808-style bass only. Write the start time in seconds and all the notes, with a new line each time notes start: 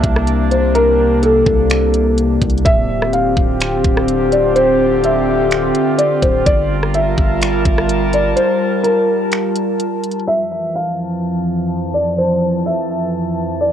0.04 C2
1.46 C2
2.42 C2
2.66 D1
3.37 D1
3.84 D1
6.22 D1
6.46 G1
7.18 G1
7.65 G1